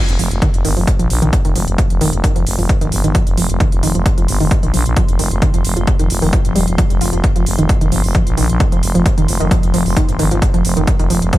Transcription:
Already playing: synth drone F3
0.09 fm bass F1, closed hi-hat
0.19 fm bass F1, synth arpeggio sound F3, open hi-hat
0.31 fm bass F1, closed hi-hat
0.42 synth arpeggio sound D#3, kick, closed hi-hat
0.54 fm bass F1, closed hi-hat
0.65 fm bass G1, synth arpeggio sound D#3, open hi-hat
0.77 fm bass F1, synth arpeggio sound F3, open hi-hat
0.87 kick, closed hi-hat
0.99 fm bass A#1, synth arpeggio sound F3, closed hi-hat
1.10 fm bass A#1, open hi-hat
1.22 fm bass A#1, synth arpeggio sound D#3, closed hi-hat
1.33 kick, closed hi-hat
1.45 fm bass F1, synth arpeggio sound D#3, closed hi-hat
1.56 fm bass F1, synth arpeggio sound F3, open hi-hat
1.68 fm bass F1, closed hi-hat
1.78 synth arpeggio sound F3, kick, closed hi-hat
1.90 fm bass F1, closed hi-hat
2.01 fm bass F1, synth arpeggio sound D#3, open hi-hat
2.13 fm bass F1, closed hi-hat
2.24 synth arpeggio sound D#3, kick, closed hi-hat
2.36 fm bass F1, synth arpeggio sound F3, closed hi-hat
2.46 fm bass F1, open hi-hat
2.59 fm bass F1, synth arpeggio sound F3, open hi-hat
2.69 kick, closed hi-hat
2.81 fm bass G1, synth arpeggio sound D#3, closed hi-hat
2.92 fm bass G1, open hi-hat
3.04 fm bass G1, synth arpeggio sound D#3, closed hi-hat
3.15 synth arpeggio sound F3, kick, closed hi-hat
3.27 fm bass F1, closed hi-hat
3.38 fm bass F1, synth arpeggio sound F3, open hi-hat
3.50 fm bass F1, closed hi-hat
3.60 synth arpeggio sound D#3, kick, closed hi-hat
3.72 fm bass F1, closed hi-hat
3.83 fm bass F1, synth arpeggio sound D#3, open hi-hat
3.95 fm bass F1, synth arpeggio sound F3, closed hi-hat
4.06 kick, closed hi-hat
4.18 fm bass F1, synth arpeggio sound F3, closed hi-hat
4.28 fm bass G1, open hi-hat
4.40 fm bass F1, synth arpeggio sound D#3, open hi-hat
4.51 kick, closed hi-hat
4.63 fm bass A#1, synth arpeggio sound D#3, closed hi-hat
4.74 fm bass A#1, synth arpeggio sound F3, open hi-hat
4.86 fm bass A#1, closed hi-hat
4.96 synth arpeggio sound F3, kick, closed hi-hat
5.09 fm bass F1, closed hi-hat
5.19 fm bass F1, synth arpeggio sound D#3, open hi-hat
5.31 fm bass F1, closed hi-hat
5.42 synth arpeggio sound D#3, kick, closed hi-hat
5.54 fm bass F1, synth arpeggio sound F3, closed hi-hat
5.65 fm bass F1, open hi-hat
5.77 fm bass F1, synth arpeggio sound F3, closed hi-hat
5.87 kick, closed hi-hat
5.99 fm bass F1, synth arpeggio sound D#3, closed hi-hat
6.10 fm bass F1, open hi-hat
6.22 fm bass F1, synth arpeggio sound D#3, open hi-hat
6.33 synth arpeggio sound F3, kick, closed hi-hat
6.45 fm bass G1, closed hi-hat
6.56 fm bass D#1, synth arpeggio sound G3, open hi-hat
6.68 fm bass D#1, closed hi-hat
6.78 synth arpeggio sound F3, kick, closed hi-hat
6.90 fm bass F1, closed hi-hat
7.01 fm bass F1, synth arpeggio sound F4, open hi-hat
7.13 fm bass F1, synth arpeggio sound F3, closed hi-hat
7.24 kick, closed hi-hat
7.36 fm bass F1, synth arpeggio sound F3, closed hi-hat
7.46 fm bass F1, open hi-hat
7.59 fm bass F1, synth arpeggio sound D#3, closed hi-hat
7.69 kick, closed hi-hat
7.81 fm bass F1, synth arpeggio sound D#3, closed hi-hat
7.92 fm bass G1, synth arpeggio sound F3, open hi-hat
8.04 fm bass F1, open hi-hat
8.15 synth arpeggio sound F3, kick, closed hi-hat
8.27 fm bass A#1, closed hi-hat
8.37 fm bass A#1, synth arpeggio sound D#3, open hi-hat
8.50 fm bass A#1, closed hi-hat
8.60 synth arpeggio sound D#3, kick, closed hi-hat
8.72 fm bass F1, synth arpeggio sound F3, closed hi-hat
8.83 fm bass F1, open hi-hat
8.95 fm bass F1, synth arpeggio sound F3, closed hi-hat
9.06 kick, closed hi-hat
9.18 fm bass F1, synth arpeggio sound D#3, closed hi-hat
9.28 fm bass F1, open hi-hat
9.40 fm bass F1, synth arpeggio sound D#3, closed hi-hat
9.51 synth arpeggio sound F3, kick, closed hi-hat
9.63 fm bass F1, closed hi-hat
9.74 fm bass F1, synth arpeggio sound F3, open hi-hat
9.86 fm bass F1, open hi-hat
9.97 synth arpeggio sound D#3, kick, closed hi-hat
10.09 fm bass G1, closed hi-hat
10.19 fm bass G1, synth arpeggio sound D#3, open hi-hat
10.31 fm bass G1, synth arpeggio sound F3, closed hi-hat
10.42 kick, closed hi-hat
10.54 fm bass F1, synth arpeggio sound F3, closed hi-hat
10.65 fm bass F1, open hi-hat
10.77 fm bass F1, synth arpeggio sound D#3, closed hi-hat
10.87 kick, closed hi-hat
10.99 fm bass F1, synth arpeggio sound D#3, closed hi-hat
11.10 fm bass F1, synth arpeggio sound F3, open hi-hat
11.22 fm bass F1, closed hi-hat
11.33 synth arpeggio sound F3, kick, closed hi-hat

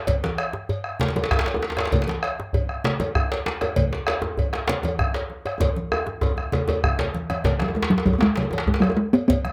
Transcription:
0.07 bombo low, cowbell, djembe slap, djembe bass, low conga
0.24 djembe slap, high conga
0.38 bombo rim, cowbell
0.53 bombo rim, djembe slap, djembe tone
0.69 cowbell, djembe bass
0.84 bombo rim
1.00 bombo rim, cowbell, djembe slap, low conga
1.08 djembe slap
1.16 cowbell, djembe slap, high conga, djembe tone
1.24 djembe slap
1.31 bombo rim, bombo low, djembe slap, high conga, djembe bass
1.39 djembe slap
1.46 bombo rim, cowbell, djembe slap
1.54 djembe tone
1.62 djembe slap, high conga
1.70 djembe slap
1.77 bombo rim, cowbell, djembe slap, djembe tone
1.79 djembe slap
1.85 djembe slap
1.92 bombo low, cowbell, djembe slap, djembe tone, low conga, djembe bass
2.02 djembe slap
2.08 djembe slap, high conga
2.23 bombo rim, cowbell
2.38 bombo rim, djembe slap, djembe tone
2.53 bombo low, cowbell, djembe bass
2.69 bombo rim
2.84 bombo rim, cowbell, djembe slap, low conga
3.00 cowbell, djembe slap, djembe tone, high conga
3.15 bombo rim, bombo low, high conga, djembe bass
3.32 bombo rim, cowbell, djembe slap
3.46 djembe slap, high conga
3.61 bombo rim, cowbell, djembe slap, djembe tone
3.76 bombo low, cowbell, djembe slap, low conga, djembe bass
3.93 djembe slap
4.07 bombo rim, cowbell, djembe slap
4.22 bombo rim, djembe slap, djembe tone
4.37 bombo low, cowbell, djembe bass
4.53 bombo rim, djembe slap
4.68 bombo rim, cowbell, djembe slap, low conga
4.83 cowbell, djembe slap, djembe tone, high conga
4.99 bombo rim, bombo low, high conga, djembe bass
5.14 bombo rim, cowbell, djembe slap
5.30 high conga
5.45 bombo rim, cowbell, djembe slap, djembe tone
5.60 bombo low, cowbell, djembe tone, djembe bass, low conga
5.76 high conga
5.92 bombo rim, djembe tone
6.07 bombo rim, djembe slap, djembe tone, high conga
6.21 bombo low, cowbell, djembe slap, djembe tone, high conga, djembe bass
6.37 bombo rim, djembe slap, high conga
6.52 cowbell, djembe tone, low conga
6.68 cowbell, djembe slap, djembe tone, low conga
6.84 bombo rim, bombo low, djembe bass, low conga
6.99 bombo rim, cowbell, djembe slap, low conga
7.14 bombo rim, high conga
7.30 bombo rim, cowbell, djembe slap, high conga, djembe tone
7.44 bombo low, cowbell, djembe slap, low conga, djembe bass
7.59 talking drum F#3, bombo rim, djembe slap, high conga
7.68 djembe tone
7.75 talking drum G#3, djembe tone
7.82 djembe slap
7.90 talking drum F#3, bombo rim, djembe slap, djembe tone, high conga
7.98 djembe slap
8.06 talking drum F#3, bombo low, cowbell, djembe slap, djembe tone, djembe bass
8.13 djembe tone
8.19 talking drum G#3 B3, bombo rim, djembe slap
8.36 talking drum F#3, bombo rim, cowbell, djembe slap, low conga
8.43 djembe tone
8.51 bombo rim, djembe slap, djembe tone, high conga
8.53 cowbell, djembe tone
8.58 djembe slap
8.66 talking drum G#3, bombo low, djembe bass
8.74 djembe slap
8.80 talking drum F#3 G#3, bombo rim, cowbell, djembe tone
8.85 high conga
8.90 djembe tone
8.97 talking drum G#3, djembe slap
9.13 talking drum B3, bombo rim, cowbell, djembe slap, djembe tone
9.28 talking drum B3, bombo low, cowbell, djembe bass, low conga
9.45 bombo rim, high conga

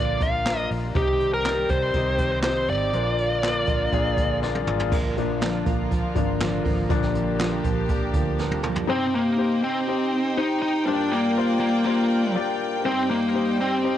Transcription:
Already playing: fingered electric bass A#1, grand piano A#2 A#3 D4 F4 D5 F5, string section D3 F3 A#3 F4, lead electric guitar D5
0.21 lead electric guitar F5, kick, closed hi-hat
0.45 grand piano A#3 D4 F4 A#4, snare, clap, closed hi-hat
0.71 fingered electric bass A#1, open hi-hat
0.95 fingered electric bass C2, grand piano C3 C4 D#4 G4 D#5, string section D#3 G3 C4 G4, lead electric guitar G4, kick, closed hi-hat
1.20 closed hi-hat
1.34 lead electric guitar A#4
1.44 grand piano C4 D#4 G4 D5, snare, clap, closed hi-hat
1.69 fingered electric bass C2, lead electric guitar C5, kick, closed hi-hat
1.94 fingered electric bass C2, grand piano C4 D#4 G4 D#5, kick, closed hi-hat
2.18 kick, closed hi-hat
2.32 lead electric guitar C5
2.42 grand piano C4 D#4 G4 D#5, lead electric guitar C5, snare, clap, closed hi-hat
2.68 fingered electric bass G#1, lead electric guitar D5, open hi-hat
2.93 fingered electric bass A#1, grand piano A#2 A#3 D4 F4 C5, string section D3 F3 A#3 F4, closed hi-hat
3.01 grand piano D5
3.18 closed hi-hat
3.43 grand piano A#3 D4 F4 D5, snare, clap, closed hi-hat
3.67 fingered electric bass A#1, kick, closed hi-hat
3.92 fingered electric bass A#1, grand piano A#3 D4 F4 G#4, kick, closed hi-hat
4.17 kick, closed hi-hat
4.42 grand piano A#3 D4 F4 D5, snare
4.55 high tom
4.67 fingered electric bass G#1, mid tom
4.79 floor tom
4.91 fingered electric bass A#1, steel-string acoustic guitar A#2 D3 F3 A#3 D4 A#4, string section D3 F3 A#3 F4, kick, crash
5.16 grand piano F3 A#3 D4, steel-string acoustic guitar F3 A#3 D4 A#4, closed hi-hat
5.41 steel-string acoustic guitar A#2 D3 F3 A#3 D4 A#4, snare, clap, closed hi-hat
5.66 fingered electric bass A#1, steel-string acoustic guitar F3 A#3 D4 A#4, kick, closed hi-hat
5.91 steel-string acoustic guitar F3 A#3 D4 A#4, kick, closed hi-hat
6.15 fingered electric bass G#1, grand piano F3 A#3 D4, steel-string acoustic guitar F3 A#3 D4 A#4, kick, closed hi-hat
6.40 steel-string acoustic guitar A#2 D3 F3 A#3 D4 A#4, snare, clap, closed hi-hat
6.65 fingered electric bass G#1, steel-string acoustic guitar F3 A#3 D4 A#4, kick, open hi-hat
6.88 fingered electric bass A#1, steel-string acoustic guitar A#2 D3 F3 A#3 D4 A#4, grand piano F3 A#3 D4, string section G4, kick, closed hi-hat
7.02 snare
7.14 steel-string acoustic guitar F3 A#3 D4 A#4, closed hi-hat
7.39 steel-string acoustic guitar A#2 D3 F3 A#3 D4 A#4, snare, clap, closed hi-hat
7.63 fingered electric bass A#1, steel-string acoustic guitar F3 A#3 D4 A#4, kick, closed hi-hat
7.88 steel-string acoustic guitar F3 A#3 D4 A#4, kick, closed hi-hat
8.13 fingered electric bass D2, steel-string acoustic guitar F3 A#3 D4 A#4, kick, closed hi-hat
8.38 steel-string acoustic guitar A#2 D3 F3 A#3 D4 A#4, snare
8.51 high tom
8.63 steel-string acoustic guitar F3 A#3 D4 A#4, mid tom
8.76 floor tom
8.87 grand piano C3 D#4 G4 C5, lead electric guitar C4, string section D#4 G4 C5 G5
9.15 lead electric guitar A#3
9.37 grand piano D#4 G4 C5
9.64 lead electric guitar C4
9.87 grand piano D#4 G4 C5
10.37 grand piano D#4 G4 C5, lead electric guitar D#4
10.62 lead electric guitar D#4
10.86 grand piano G2 A#3 D4 F4 G4 C5, lead electric guitar D4, string section F4 A#4 D5
10.94 grand piano D5
11.11 lead electric guitar A#3
11.37 grand piano A#3 D4 F4 G4 C5
11.60 lead electric guitar A#3
11.85 lead electric guitar A#3, grand piano A#3 D4 F4 G4 C5
12.35 grand piano A#3 D4 F4 G4 D5
12.84 grand piano G2 D#4 G4 C5, string section G3 D#4 G4 C5, lead electric guitar C4
13.11 lead electric guitar A#3
13.34 grand piano D#4 G4 C5
13.61 lead electric guitar C4
13.84 grand piano D#4 G4 C5

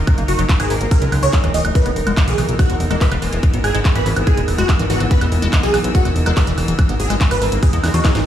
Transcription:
Already playing: string section A#3 D#4 D#5 A#5, ambient pad D#4 A#4
0.07 acid bass D#3, kick, closed hi-hat, high woodblock
0.18 analog synth bass F#1, acid bass A#3, closed hi-hat
0.28 analog synth bass F#1, supersaw synth F#4, open hi-hat
0.39 analog synth bass F#1, acid bass F#3, closed hi-hat, high woodblock
0.49 kick, clap, closed hi-hat
0.60 analog synth bass G#1, acid bass D#3, supersaw synth G#4, closed hi-hat, high woodblock
0.70 analog synth bass G#1, acid bass D#3, wobble bass A#3, open hi-hat
0.81 analog synth bass G#1, wobble bass A#3, closed hi-hat
0.91 wobble bass G#3, supersaw synth A#4, kick, closed hi-hat, high woodblock
1.02 analog synth bass C#2, acid bass F#3, closed hi-hat
1.12 analog synth bass C#2, acid bass F#3, open hi-hat, high woodblock
1.23 analog synth bass C#2, acid bass D#3, supersaw synth C#5, closed hi-hat
1.33 kick, clap, closed hi-hat
1.44 analog synth bass D#1, acid bass E3, closed hi-hat, high woodblock
1.54 analog synth bass D#1, acid bass E3, supersaw synth D#5, open hi-hat
1.65 analog synth bass D#1, acid bass A#3, closed hi-hat, high woodblock
1.75 acid bass E3, string section B3, supersaw synth B4, kick, closed hi-hat
1.81 string section E3
1.86 analog synth bass E1, acid bass B3, closed hi-hat, high woodblock
1.96 analog synth bass E1, open hi-hat
2.07 analog synth bass E1, acid bass G#3, closed hi-hat, high woodblock
2.17 kick, clap, closed hi-hat
2.24 analog synth bass B1, acid bass E3, supersaw synth G#4, string section E6, closed hi-hat
2.38 analog synth bass B1, acid bass E3, open hi-hat, high woodblock
2.49 analog synth bass B1, closed hi-hat
2.59 supersaw synth F#4, kick, closed hi-hat, high woodblock
2.70 analog synth bass E1, acid bass G#3, closed hi-hat
2.80 analog synth bass E1, open hi-hat
2.91 analog synth bass E1, acid bass G#3, wobble bass A#3, closed hi-hat, high woodblock
3.01 supersaw synth B4, kick, clap, closed hi-hat
3.12 analog synth bass E1, acid bass E3, closed hi-hat, high woodblock
3.22 analog synth bass E1, acid bass E3, wobble bass G#3, open hi-hat
3.33 analog synth bass E1, acid bass E3, closed hi-hat
3.43 acid bass E3, kick, closed hi-hat, high woodblock
3.54 analog synth bass G#1, acid bass B3, closed hi-hat
3.64 analog synth bass G#1, supersaw synth G#4, open hi-hat, high woodblock
3.75 analog synth bass G#1, acid bass G#3, closed hi-hat
3.85 kick, clap, closed hi-hat
3.95 analog synth bass G#1, acid bass E3, wobble bass G#3, supersaw synth B4, closed hi-hat, high woodblock
4.06 analog synth bass G#1, acid bass E3, wobble bass G#3, open hi-hat
4.16 analog synth bass G#1, closed hi-hat, high woodblock
4.27 supersaw synth G#4, kick, closed hi-hat
4.37 analog synth bass E1, acid bass G#3, closed hi-hat
4.48 analog synth bass E1, open hi-hat, high woodblock
4.58 analog synth bass E1, acid bass G#3, supersaw synth F#4, closed hi-hat
4.69 kick, clap, closed hi-hat, high woodblock
4.79 analog synth bass G#1, acid bass E3, closed hi-hat
4.90 analog synth bass G#1, acid bass E3, supersaw synth F#4, open hi-hat
5.00 analog synth bass G#1, acid bass E3, closed hi-hat, high woodblock
5.11 acid bass E3, supersaw synth B4, kick, closed hi-hat
5.21 analog synth bass E1, acid bass B3, closed hi-hat, high woodblock
5.32 analog synth bass E1, open hi-hat
5.42 analog synth bass E1, acid bass G#3, closed hi-hat
5.53 kick, clap, closed hi-hat, high woodblock
5.63 analog synth bass B1, acid bass E3, supersaw synth G#4, closed hi-hat
5.74 analog synth bass B1, acid bass E3, open hi-hat, high woodblock
5.84 analog synth bass B1, closed hi-hat
5.95 supersaw synth F#4, kick, closed hi-hat
6.05 analog synth bass E1, acid bass G#3, closed hi-hat, high woodblock
6.16 analog synth bass E1, open hi-hat
6.26 analog synth bass E1, acid bass G#3, wobble bass A#3, closed hi-hat, high woodblock
6.37 supersaw synth B4, kick, clap, closed hi-hat
6.47 analog synth bass E1, acid bass E3, closed hi-hat
6.58 analog synth bass E1, acid bass E3, open hi-hat, high woodblock
6.68 analog synth bass E1, acid bass E3, closed hi-hat
6.79 acid bass E3, kick, closed hi-hat, high woodblock
6.89 analog synth bass G#1, acid bass B3, closed hi-hat
7.00 analog synth bass G#1, supersaw synth G#4, open hi-hat
7.10 analog synth bass G#1, acid bass G#3, closed hi-hat, high woodblock
7.21 kick, clap, closed hi-hat
7.31 analog synth bass G#1, acid bass E3, supersaw synth B4, closed hi-hat, high woodblock
7.42 analog synth bass G#1, acid bass E3, wobble bass A#3, open hi-hat
7.52 analog synth bass G#1, wobble bass A#3, closed hi-hat
7.63 wobble bass G#3, supersaw synth G#4, kick, closed hi-hat, swell, high woodblock
7.73 analog synth bass E2, acid bass G#3, closed hi-hat
7.84 analog synth bass E2, snare, open hi-hat, high woodblock
7.94 analog synth bass E2, acid bass E3, supersaw synth F#4, closed hi-hat
8.05 acid bass E3, kick, snare, clap, closed hi-hat
8.15 analog synth bass G#1, acid bass E3, snare, closed hi-hat, high woodblock

